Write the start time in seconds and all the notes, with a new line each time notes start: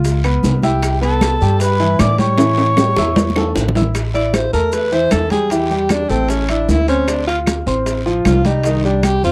Already playing: C#2 F4 F5 F6
0.05 high bongo, high conga, high timbale, long guiro, maracas
0.24 B3 B4 B5, high conga, high timbale, claves, maracas
0.43 C2, high bongo, low bongo, high conga, short guiro, maracas
0.63 E4 G4 E5 G5 E6, high bongo, high conga, high timbale, short guiro, maracas
0.83 high bongo, high conga, high timbale, long guiro, claves, maracas
1.01 B3 A4 B4 A5 B5, high bongo, high conga, high timbale, maracas
1.21 high bongo, high conga, high timbale, short guiro, claves, maracas
1.41 G2 G3 G4 G5, high bongo, high conga, short guiro, maracas
1.60 B4 B5, high bongo, high conga, high timbale, long guiro, maracas
1.80 E3 E4 E5, high conga, maracas
1.99 A2 D5 D6, high bongo, low bongo, high conga, high timbale, low timbale, short guiro, claves, maracas
2.18 G3 G4 C#5 G5 C#6, high bongo, high conga, high timbale, short guiro, maracas
2.38 E3 E4 E5, high bongo, high conga, high timbale, long guiro, maracas
2.57 high bongo, high conga, high timbale, maracas
2.77 G3 G4 G5, high bongo, high conga, high timbale, short guiro, claves, maracas
2.96 E2 E4 E5 E6, high bongo, high conga, low timbale, short guiro, maracas
3.16 high conga, low timbale, long guiro, maracas
3.30 high conga
3.36 A3 A4 A5, low bongo, low timbale, claves, maracas
3.56 A1, low bongo, short guiro, maracas
3.69 low conga
3.75 E4 E5 E6, low bongo, low timbale, short guiro, maracas
3.82 low conga
3.95 high bongo, high conga, high timbale, long guiro, claves, maracas
4.14 E4 D5 E5 E6, high bongo, high conga, high timbale, maracas
4.34 C5, high bongo, high conga, high timbale, short guiro, claves, maracas
4.53 E2 A3 A4 A#4 A5, high bongo, high conga, short guiro, maracas
4.72 B4, high bongo, high conga, high timbale, long guiro, maracas
4.92 E3 E4 C5 E5, high conga, maracas
5.11 E2 A4, high bongo, low bongo, high conga, high timbale, low timbale, short guiro, claves, maracas
5.30 G3 G4 G#4 G5, high bongo, high conga, high timbale, short guiro, maracas
5.50 E3 E4 G4 E5, high bongo, high conga, high timbale, long guiro, maracas
5.71 G3 G4 G5, high bongo, high conga, maracas
5.89 D4, high bongo, high conga, high timbale, short guiro, claves, maracas
6.09 A1 A3 C4 A4 A5, high bongo, high conga, short guiro, maracas
6.29 C#4, high bongo, high conga, high timbale, long guiro, maracas
6.48 D4 E4 E5 E6, high conga, high timbale, claves, maracas
6.68 D2 E4, high bongo, low bongo, high conga, short guiro, maracas
6.88 C4 C#4 C5 C6, high bongo, high timbale, short guiro, maracas
7.08 D4, high bongo, high conga, high timbale, long guiro, claves, maracas
7.27 F4 F5 F6, high bongo, high conga, high timbale, maracas
7.46 high bongo, high conga, high timbale, short guiro, claves, maracas
7.66 A1 C4 C5 C6, high bongo, high conga, short guiro, maracas
7.86 high bongo, high conga, high timbale, long guiro, maracas
8.06 F3 F4 F5, high conga, maracas
8.25 C2 F4, high bongo, low bongo, high conga, high timbale, low timbale, short guiro, claves, maracas
8.45 G3 D#4 G4 G5, high bongo, high conga, high timbale, short guiro, maracas
8.63 D#3 D#4 D#5, high bongo, high conga, high timbale, long guiro, maracas
8.84 G3 D4 G4 G5, high bongo, high conga, maracas
9.03 G4, high bongo, high conga, high timbale, short guiro, claves, maracas
9.23 F2 C4 F4 C5 C6, high bongo, high conga, short guiro, maracas